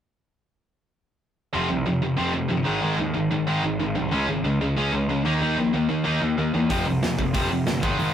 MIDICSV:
0, 0, Header, 1, 4, 480
1, 0, Start_track
1, 0, Key_signature, -4, "minor"
1, 0, Tempo, 322407
1, 2297, Time_signature, 4, 2, 24, 8
1, 12114, End_track
2, 0, Start_track
2, 0, Title_t, "Distorted electric guitar"
2, 0, Program_c, 0, 30
2, 2281, Note_on_c, 0, 41, 72
2, 2292, Note_on_c, 0, 48, 76
2, 2296, Note_on_c, 0, 53, 71
2, 2505, Note_off_c, 0, 41, 0
2, 2511, Note_off_c, 0, 48, 0
2, 2522, Note_off_c, 0, 53, 0
2, 2522, Note_on_c, 0, 41, 63
2, 2529, Note_on_c, 0, 48, 63
2, 2746, Note_off_c, 0, 41, 0
2, 2749, Note_off_c, 0, 48, 0
2, 2765, Note_on_c, 0, 41, 74
2, 2768, Note_on_c, 0, 48, 84
2, 2987, Note_off_c, 0, 41, 0
2, 2989, Note_off_c, 0, 48, 0
2, 3007, Note_on_c, 0, 48, 74
2, 3010, Note_on_c, 0, 41, 63
2, 3209, Note_off_c, 0, 41, 0
2, 3221, Note_off_c, 0, 48, 0
2, 3227, Note_on_c, 0, 41, 73
2, 3239, Note_on_c, 0, 48, 81
2, 3243, Note_on_c, 0, 53, 89
2, 3458, Note_off_c, 0, 41, 0
2, 3458, Note_off_c, 0, 48, 0
2, 3476, Note_on_c, 0, 41, 67
2, 3476, Note_on_c, 0, 48, 61
2, 3477, Note_off_c, 0, 53, 0
2, 3687, Note_off_c, 0, 41, 0
2, 3704, Note_off_c, 0, 48, 0
2, 3705, Note_on_c, 0, 41, 65
2, 3725, Note_on_c, 0, 48, 77
2, 3937, Note_off_c, 0, 41, 0
2, 3942, Note_on_c, 0, 44, 89
2, 3948, Note_off_c, 0, 48, 0
2, 3956, Note_on_c, 0, 51, 87
2, 3964, Note_on_c, 0, 56, 97
2, 4170, Note_off_c, 0, 44, 0
2, 4175, Note_off_c, 0, 51, 0
2, 4182, Note_off_c, 0, 56, 0
2, 4187, Note_on_c, 0, 44, 70
2, 4193, Note_on_c, 0, 51, 77
2, 4200, Note_on_c, 0, 56, 92
2, 4426, Note_off_c, 0, 44, 0
2, 4432, Note_off_c, 0, 51, 0
2, 4436, Note_off_c, 0, 56, 0
2, 4444, Note_on_c, 0, 44, 55
2, 4451, Note_on_c, 0, 51, 71
2, 4664, Note_off_c, 0, 51, 0
2, 4668, Note_off_c, 0, 44, 0
2, 4682, Note_on_c, 0, 51, 78
2, 4687, Note_on_c, 0, 44, 66
2, 4907, Note_off_c, 0, 51, 0
2, 4910, Note_off_c, 0, 44, 0
2, 4928, Note_on_c, 0, 44, 75
2, 4934, Note_on_c, 0, 51, 73
2, 5145, Note_off_c, 0, 44, 0
2, 5154, Note_off_c, 0, 51, 0
2, 5163, Note_on_c, 0, 44, 80
2, 5175, Note_on_c, 0, 51, 93
2, 5177, Note_on_c, 0, 56, 86
2, 5398, Note_off_c, 0, 44, 0
2, 5404, Note_off_c, 0, 51, 0
2, 5404, Note_off_c, 0, 56, 0
2, 5417, Note_on_c, 0, 44, 68
2, 5421, Note_on_c, 0, 51, 60
2, 5631, Note_off_c, 0, 44, 0
2, 5637, Note_off_c, 0, 51, 0
2, 5649, Note_on_c, 0, 44, 70
2, 5659, Note_on_c, 0, 51, 80
2, 5860, Note_off_c, 0, 44, 0
2, 5871, Note_off_c, 0, 51, 0
2, 5878, Note_on_c, 0, 44, 73
2, 5889, Note_on_c, 0, 51, 71
2, 6106, Note_off_c, 0, 44, 0
2, 6111, Note_off_c, 0, 51, 0
2, 6126, Note_on_c, 0, 56, 74
2, 6130, Note_on_c, 0, 49, 74
2, 6137, Note_on_c, 0, 61, 84
2, 6346, Note_off_c, 0, 56, 0
2, 6347, Note_off_c, 0, 49, 0
2, 6364, Note_on_c, 0, 56, 67
2, 6365, Note_off_c, 0, 61, 0
2, 6365, Note_on_c, 0, 49, 60
2, 6589, Note_off_c, 0, 56, 0
2, 6590, Note_off_c, 0, 49, 0
2, 6615, Note_on_c, 0, 49, 76
2, 6627, Note_on_c, 0, 56, 81
2, 6835, Note_off_c, 0, 49, 0
2, 6841, Note_off_c, 0, 56, 0
2, 6865, Note_on_c, 0, 49, 67
2, 6866, Note_on_c, 0, 56, 71
2, 7080, Note_off_c, 0, 49, 0
2, 7080, Note_off_c, 0, 56, 0
2, 7097, Note_on_c, 0, 49, 76
2, 7107, Note_on_c, 0, 56, 85
2, 7112, Note_on_c, 0, 61, 92
2, 7316, Note_off_c, 0, 49, 0
2, 7318, Note_off_c, 0, 56, 0
2, 7333, Note_off_c, 0, 61, 0
2, 7334, Note_on_c, 0, 49, 59
2, 7335, Note_on_c, 0, 56, 69
2, 7554, Note_off_c, 0, 49, 0
2, 7555, Note_off_c, 0, 56, 0
2, 7583, Note_on_c, 0, 49, 63
2, 7584, Note_on_c, 0, 56, 83
2, 7799, Note_off_c, 0, 49, 0
2, 7799, Note_off_c, 0, 56, 0
2, 7817, Note_on_c, 0, 51, 84
2, 7819, Note_on_c, 0, 58, 96
2, 7825, Note_on_c, 0, 63, 93
2, 8039, Note_off_c, 0, 51, 0
2, 8046, Note_off_c, 0, 58, 0
2, 8050, Note_off_c, 0, 63, 0
2, 8057, Note_on_c, 0, 51, 69
2, 8061, Note_on_c, 0, 58, 72
2, 8068, Note_on_c, 0, 63, 84
2, 8276, Note_off_c, 0, 51, 0
2, 8288, Note_off_c, 0, 58, 0
2, 8291, Note_off_c, 0, 63, 0
2, 8294, Note_on_c, 0, 51, 55
2, 8309, Note_on_c, 0, 58, 66
2, 8514, Note_off_c, 0, 51, 0
2, 8521, Note_off_c, 0, 58, 0
2, 8539, Note_on_c, 0, 51, 63
2, 8547, Note_on_c, 0, 58, 80
2, 8750, Note_off_c, 0, 51, 0
2, 8752, Note_off_c, 0, 58, 0
2, 8768, Note_on_c, 0, 51, 67
2, 8770, Note_on_c, 0, 58, 81
2, 8975, Note_off_c, 0, 51, 0
2, 8985, Note_off_c, 0, 58, 0
2, 8993, Note_on_c, 0, 51, 81
2, 9003, Note_on_c, 0, 58, 80
2, 9014, Note_on_c, 0, 63, 81
2, 9229, Note_off_c, 0, 51, 0
2, 9238, Note_off_c, 0, 58, 0
2, 9243, Note_off_c, 0, 63, 0
2, 9246, Note_on_c, 0, 51, 56
2, 9254, Note_on_c, 0, 58, 71
2, 9470, Note_off_c, 0, 51, 0
2, 9473, Note_off_c, 0, 58, 0
2, 9500, Note_on_c, 0, 51, 58
2, 9510, Note_on_c, 0, 58, 78
2, 9716, Note_off_c, 0, 51, 0
2, 9721, Note_off_c, 0, 58, 0
2, 9739, Note_on_c, 0, 51, 66
2, 9748, Note_on_c, 0, 58, 73
2, 9955, Note_off_c, 0, 51, 0
2, 9960, Note_off_c, 0, 58, 0
2, 9969, Note_on_c, 0, 41, 72
2, 9975, Note_on_c, 0, 53, 79
2, 9976, Note_on_c, 0, 48, 78
2, 10200, Note_off_c, 0, 41, 0
2, 10202, Note_off_c, 0, 53, 0
2, 10203, Note_off_c, 0, 48, 0
2, 10221, Note_on_c, 0, 41, 49
2, 10224, Note_on_c, 0, 48, 64
2, 10435, Note_off_c, 0, 41, 0
2, 10437, Note_off_c, 0, 48, 0
2, 10462, Note_on_c, 0, 41, 77
2, 10467, Note_on_c, 0, 48, 82
2, 10676, Note_off_c, 0, 41, 0
2, 10678, Note_off_c, 0, 48, 0
2, 10699, Note_on_c, 0, 48, 75
2, 10703, Note_on_c, 0, 41, 67
2, 10904, Note_off_c, 0, 41, 0
2, 10914, Note_off_c, 0, 48, 0
2, 10922, Note_on_c, 0, 41, 77
2, 10929, Note_on_c, 0, 48, 81
2, 10936, Note_on_c, 0, 53, 79
2, 11150, Note_off_c, 0, 41, 0
2, 11158, Note_off_c, 0, 48, 0
2, 11161, Note_off_c, 0, 53, 0
2, 11168, Note_on_c, 0, 41, 65
2, 11187, Note_on_c, 0, 48, 68
2, 11387, Note_off_c, 0, 41, 0
2, 11397, Note_off_c, 0, 48, 0
2, 11415, Note_on_c, 0, 41, 66
2, 11419, Note_on_c, 0, 48, 86
2, 11630, Note_off_c, 0, 41, 0
2, 11632, Note_off_c, 0, 48, 0
2, 11654, Note_on_c, 0, 44, 77
2, 11661, Note_on_c, 0, 51, 86
2, 11666, Note_on_c, 0, 56, 102
2, 11871, Note_off_c, 0, 44, 0
2, 11882, Note_off_c, 0, 51, 0
2, 11884, Note_off_c, 0, 56, 0
2, 11889, Note_on_c, 0, 44, 74
2, 11904, Note_on_c, 0, 51, 76
2, 11911, Note_on_c, 0, 56, 91
2, 12114, Note_off_c, 0, 44, 0
2, 12114, Note_off_c, 0, 51, 0
2, 12114, Note_off_c, 0, 56, 0
2, 12114, End_track
3, 0, Start_track
3, 0, Title_t, "Picked electric bass"
3, 0, Program_c, 1, 34
3, 2306, Note_on_c, 1, 29, 98
3, 2521, Note_off_c, 1, 29, 0
3, 2530, Note_on_c, 1, 36, 79
3, 2762, Note_off_c, 1, 36, 0
3, 2772, Note_on_c, 1, 29, 77
3, 3003, Note_off_c, 1, 29, 0
3, 3029, Note_on_c, 1, 29, 79
3, 3239, Note_off_c, 1, 29, 0
3, 3248, Note_on_c, 1, 29, 87
3, 3481, Note_off_c, 1, 29, 0
3, 3505, Note_on_c, 1, 29, 84
3, 3717, Note_off_c, 1, 29, 0
3, 3726, Note_on_c, 1, 31, 83
3, 3961, Note_off_c, 1, 31, 0
3, 3976, Note_on_c, 1, 32, 76
3, 4206, Note_off_c, 1, 32, 0
3, 4215, Note_on_c, 1, 32, 104
3, 4441, Note_off_c, 1, 32, 0
3, 4450, Note_on_c, 1, 39, 69
3, 4683, Note_off_c, 1, 39, 0
3, 4695, Note_on_c, 1, 32, 71
3, 4923, Note_off_c, 1, 32, 0
3, 4932, Note_on_c, 1, 32, 82
3, 5164, Note_off_c, 1, 32, 0
3, 5173, Note_on_c, 1, 32, 80
3, 5398, Note_off_c, 1, 32, 0
3, 5406, Note_on_c, 1, 32, 81
3, 5642, Note_off_c, 1, 32, 0
3, 5657, Note_on_c, 1, 32, 89
3, 5877, Note_off_c, 1, 32, 0
3, 5886, Note_on_c, 1, 36, 70
3, 6122, Note_off_c, 1, 36, 0
3, 6129, Note_on_c, 1, 37, 97
3, 6360, Note_off_c, 1, 37, 0
3, 6368, Note_on_c, 1, 32, 73
3, 6593, Note_off_c, 1, 32, 0
3, 6602, Note_on_c, 1, 37, 76
3, 6840, Note_off_c, 1, 37, 0
3, 6860, Note_on_c, 1, 37, 69
3, 7089, Note_off_c, 1, 37, 0
3, 7100, Note_on_c, 1, 37, 83
3, 7324, Note_off_c, 1, 37, 0
3, 7333, Note_on_c, 1, 37, 85
3, 7557, Note_off_c, 1, 37, 0
3, 7566, Note_on_c, 1, 37, 93
3, 7814, Note_off_c, 1, 37, 0
3, 7814, Note_on_c, 1, 39, 75
3, 8046, Note_off_c, 1, 39, 0
3, 8053, Note_on_c, 1, 39, 100
3, 8279, Note_off_c, 1, 39, 0
3, 8288, Note_on_c, 1, 34, 77
3, 8523, Note_off_c, 1, 34, 0
3, 8534, Note_on_c, 1, 39, 81
3, 8762, Note_off_c, 1, 39, 0
3, 8771, Note_on_c, 1, 39, 71
3, 9004, Note_off_c, 1, 39, 0
3, 9013, Note_on_c, 1, 39, 77
3, 9245, Note_off_c, 1, 39, 0
3, 9258, Note_on_c, 1, 39, 86
3, 9479, Note_off_c, 1, 39, 0
3, 9488, Note_on_c, 1, 39, 76
3, 9722, Note_off_c, 1, 39, 0
3, 9733, Note_on_c, 1, 40, 74
3, 9964, Note_off_c, 1, 40, 0
3, 9981, Note_on_c, 1, 29, 100
3, 10208, Note_off_c, 1, 29, 0
3, 10218, Note_on_c, 1, 36, 74
3, 10446, Note_off_c, 1, 36, 0
3, 10462, Note_on_c, 1, 29, 73
3, 10688, Note_off_c, 1, 29, 0
3, 10698, Note_on_c, 1, 29, 74
3, 10925, Note_off_c, 1, 29, 0
3, 10936, Note_on_c, 1, 29, 84
3, 11164, Note_off_c, 1, 29, 0
3, 11185, Note_on_c, 1, 29, 76
3, 11395, Note_off_c, 1, 29, 0
3, 11404, Note_on_c, 1, 31, 86
3, 11636, Note_off_c, 1, 31, 0
3, 11665, Note_on_c, 1, 32, 75
3, 11887, Note_off_c, 1, 32, 0
3, 11900, Note_on_c, 1, 32, 108
3, 12114, Note_off_c, 1, 32, 0
3, 12114, End_track
4, 0, Start_track
4, 0, Title_t, "Drums"
4, 9977, Note_on_c, 9, 36, 94
4, 9977, Note_on_c, 9, 46, 44
4, 10126, Note_off_c, 9, 36, 0
4, 10126, Note_off_c, 9, 46, 0
4, 10458, Note_on_c, 9, 46, 44
4, 10464, Note_on_c, 9, 38, 103
4, 10607, Note_off_c, 9, 46, 0
4, 10613, Note_off_c, 9, 38, 0
4, 10697, Note_on_c, 9, 36, 78
4, 10846, Note_off_c, 9, 36, 0
4, 10928, Note_on_c, 9, 46, 52
4, 10936, Note_on_c, 9, 36, 99
4, 11077, Note_off_c, 9, 46, 0
4, 11085, Note_off_c, 9, 36, 0
4, 11410, Note_on_c, 9, 46, 52
4, 11416, Note_on_c, 9, 38, 95
4, 11559, Note_off_c, 9, 46, 0
4, 11565, Note_off_c, 9, 38, 0
4, 11658, Note_on_c, 9, 36, 95
4, 11807, Note_off_c, 9, 36, 0
4, 11897, Note_on_c, 9, 46, 45
4, 12045, Note_off_c, 9, 46, 0
4, 12114, End_track
0, 0, End_of_file